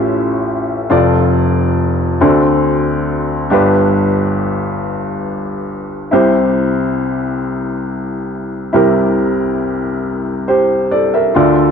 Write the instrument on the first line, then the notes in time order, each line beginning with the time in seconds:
upright piano
Already playing: A1 A2 C#4 F4 G4 A4 E5
0.90 F1 F2 F4 A4 D5
2.20 D2 D3 C4 D4 F#4 A4 D5
3.50 G1 G2 D4 G4 B4
6.11 C2 C3 E4 G4 C5
8.73 C2 C3 E4 G4 A#4
10.48 G4 C5
10.91 A4 D5
11.14 A#4 E5
11.35 D2 D3 F4 A4 D5